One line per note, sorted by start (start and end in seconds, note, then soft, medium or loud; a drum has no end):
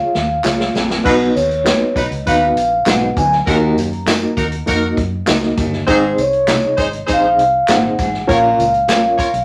0.00 0.19 F4 medium
0.00 0.19 G#4 medium
0.00 0.19 C#5 medium
0.00 0.20 F5 medium
0.00 0.72 F5 medium
0.15 0.39 D#2 medium
0.15 snare medium
0.44 0.68 C#2 loud
0.44 0.80 F4 medium
0.44 0.80 G#4 medium
0.44 0.80 C#5 medium
0.44 0.80 F5 loud
0.44 snare loud
0.44 clap medium
0.44 tambourine medium
0.60 snare medium
0.75 0.99 A#1 loud
0.75 1.00 F2 medium
0.75 snare loud
0.75 tambourine medium
0.90 snare loud
1.04 1.29 B1 loud
1.04 1.30 B2 loud
1.04 1.40 B3 loud
1.04 1.40 D#4 loud
1.04 1.15 D#4 medium
1.04 1.40 F#4 loud
1.04 1.16 F#4 loud
1.04 1.40 B4 loud
1.04 1.15 B4 loud
1.04 1.41 D#5 loud
1.04 kick loud
1.04 crash loud
1.04 tambourine soft
1.35 1.71 D#2 medium
1.35 1.98 C#5 medium
1.35 closed hi-hat medium
1.35 tambourine medium
1.51 closed hi-hat medium
1.64 2.00 B3 medium
1.64 2.00 D#4 medium
1.64 2.00 F#4 medium
1.64 2.00 B4 medium
1.64 2.01 D#5 medium
1.64 snare loud
1.64 clap loud
1.64 closed hi-hat medium
1.64 tambourine loud
1.96 2.08 B1 medium
1.96 2.06 D#4 medium
1.96 2.06 F#4 loud
1.96 2.06 B4 loud
1.96 2.25 D#5 medium
1.96 kick medium
1.96 closed hi-hat medium
1.96 tambourine medium
2.11 2.23 C#2 medium
2.11 closed hi-hat medium
2.26 2.50 D#2 loud
2.26 2.61 B3 medium
2.26 2.61 D#4 medium
2.26 2.46 D#4 loud
2.26 2.61 F#4 medium
2.26 2.46 F#4 loud
2.26 2.61 B4 medium
2.26 2.46 B4 loud
2.26 2.62 D#5 medium
2.26 2.89 F5 loud
2.26 kick loud
2.26 closed hi-hat loud
2.26 tambourine medium
2.55 2.79 A#1 loud
2.55 closed hi-hat medium
2.55 tambourine soft
2.86 3.10 B1 loud
2.86 3.11 G#2 medium
2.86 3.21 B3 medium
2.86 3.21 D#4 medium
2.86 3.21 F#4 medium
2.86 3.22 B4 medium
2.86 3.22 D#5 medium
2.86 3.16 F#5 loud
2.86 snare loud
2.86 clap medium
2.86 closed hi-hat loud
2.86 tambourine loud
3.17 3.40 D2 loud
3.17 3.42 F#2 medium
3.17 3.31 G#5 loud
3.17 kick loud
3.17 closed hi-hat medium
3.17 tambourine medium
3.32 snare soft
3.46 3.77 D#2 loud
3.46 3.90 D#2 loud
3.46 3.82 A#3 loud
3.46 3.56 D#4 medium
3.46 3.82 D#4 medium
3.46 3.56 F#4 loud
3.46 3.82 F#4 loud
3.46 3.56 A#4 loud
3.46 3.82 A#4 medium
3.46 3.82 D#5 loud
3.46 4.64 A#5 loud
3.46 kick loud
3.46 closed hi-hat medium
3.46 tambourine soft
3.77 4.24 F#2 medium
3.77 closed hi-hat medium
3.77 tambourine medium
3.93 closed hi-hat soft
4.06 4.41 A#3 medium
4.06 4.42 D#4 medium
4.06 4.42 F#4 medium
4.06 4.42 A#4 medium
4.06 4.42 D#5 medium
4.06 snare loud
4.06 clap loud
4.06 closed hi-hat medium
4.06 tambourine loud
4.37 4.60 D#2 loud
4.37 4.47 D#4 medium
4.37 4.47 F#4 medium
4.37 4.47 A#4 loud
4.37 kick loud
4.37 closed hi-hat medium
4.37 tambourine medium
4.52 closed hi-hat medium
4.66 4.91 F2 medium
4.66 5.02 A#3 medium
4.66 5.02 D#4 medium
4.66 4.87 D#4 medium
4.66 5.02 F#4 medium
4.66 4.87 F#4 loud
4.66 5.02 A#4 medium
4.66 4.87 A#4 loud
4.66 5.03 D#5 loud
4.66 kick medium
4.66 closed hi-hat medium
4.66 tambourine medium
4.97 5.21 F#2 medium
4.97 kick loud
4.97 closed hi-hat medium
5.26 5.51 C#2 medium
5.26 5.62 A#3 loud
5.26 5.62 D#4 medium
5.26 5.62 F#4 medium
5.26 5.63 A#4 medium
5.26 5.63 D#5 loud
5.26 snare loud
5.26 clap loud
5.26 closed hi-hat medium
5.26 tambourine loud
5.43 snare soft
5.57 5.81 G1 loud
5.57 5.83 D#2 medium
5.57 kick loud
5.57 snare soft
5.57 closed hi-hat medium
5.57 tambourine medium
5.73 snare soft
5.87 6.11 G#1 loud
5.87 6.13 G#2 loud
5.87 6.23 C4 loud
5.87 5.97 D#4 loud
5.87 6.23 D#4 loud
5.87 5.98 G#4 medium
5.87 6.23 G#4 loud
5.87 5.97 C5 loud
5.87 6.23 C5 loud
5.87 6.23 D#5 loud
5.87 kick loud
5.87 closed hi-hat loud
5.87 tambourine soft
6.17 6.64 C2 loud
6.17 6.81 C#5 medium
6.17 closed hi-hat medium
6.17 tambourine medium
6.33 closed hi-hat soft
6.47 6.83 C3 medium
6.47 6.83 D#4 medium
6.47 6.83 G#4 medium
6.47 6.84 D#5 medium
6.47 snare loud
6.47 clap loud
6.47 closed hi-hat medium
6.47 tambourine loud
6.77 7.01 G#1 medium
6.77 6.88 D#4 loud
6.77 6.87 G#4 medium
6.77 6.87 C5 loud
6.77 kick loud
6.77 closed hi-hat medium
6.77 tambourine medium
6.81 6.94 D#5 medium
6.93 closed hi-hat medium
7.06 7.39 A#1 loud
7.06 7.43 C4 medium
7.06 7.27 D#4 loud
7.06 7.43 D#4 medium
7.06 7.26 G#4 medium
7.06 7.43 G#4 medium
7.06 7.27 C5 loud
7.06 7.44 C5 medium
7.06 7.44 D#5 medium
7.06 kick loud
7.06 closed hi-hat medium
7.06 tambourine medium
7.13 7.73 F5 loud
7.39 7.62 C2 loud
7.39 closed hi-hat medium
7.68 7.92 G#1 loud
7.68 7.93 A#2 medium
7.68 8.03 C4 medium
7.68 8.03 D#4 medium
7.68 8.03 G#4 medium
7.68 8.04 C5 medium
7.68 8.04 D#5 medium
7.68 8.32 F#5 loud
7.68 snare loud
7.68 clap loud
7.68 closed hi-hat medium
7.68 tambourine loud
7.98 8.22 A1 loud
7.98 8.24 G#2 medium
7.98 kick loud
7.98 snare soft
7.98 closed hi-hat medium
7.98 tambourine medium
8.14 snare soft
8.27 8.52 A#1 loud
8.27 8.72 A#2 loud
8.27 8.63 C#4 loud
8.27 8.63 F4 medium
8.27 8.39 F4 loud
8.27 8.63 A#4 loud
8.27 8.39 A#4 loud
8.27 8.38 C#5 loud
8.27 8.64 C#5 loud
8.27 8.64 F5 loud
8.27 kick loud
8.27 closed hi-hat medium
8.32 9.45 F5 loud
8.59 8.89 C#2 medium
8.59 closed hi-hat medium
8.59 tambourine medium
8.74 closed hi-hat soft
8.88 9.24 A#1 medium
8.88 9.23 C#4 medium
8.88 9.23 F4 medium
8.88 9.23 A#4 medium
8.88 9.23 C#5 medium
8.88 9.24 F5 medium
8.88 snare loud
8.88 clap loud
8.88 closed hi-hat medium
8.88 tambourine loud
9.18 9.28 F4 medium
9.18 9.28 A#4 medium
9.18 9.28 C#5 loud
9.18 kick loud
9.18 closed hi-hat medium
9.18 tambourine medium
9.34 9.45 B1 loud
9.34 closed hi-hat medium